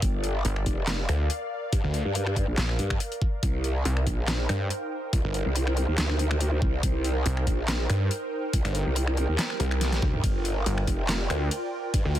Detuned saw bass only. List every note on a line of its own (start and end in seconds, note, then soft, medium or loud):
0.45 0.65 G1 loud
1.09 1.28 D2 loud
1.84 2.03 D2 loud
2.58 2.77 A#1 loud
3.85 4.05 C2 loud
4.49 4.69 G2 loud
5.24 5.44 G1 loud
7.26 7.45 C2 loud
7.89 8.09 G2 loud
8.65 8.84 G1 loud
9.60 10.01 C2 loud
10.66 10.86 G1 loud
11.30 11.50 D2 loud
12.05 12.19 D2 loud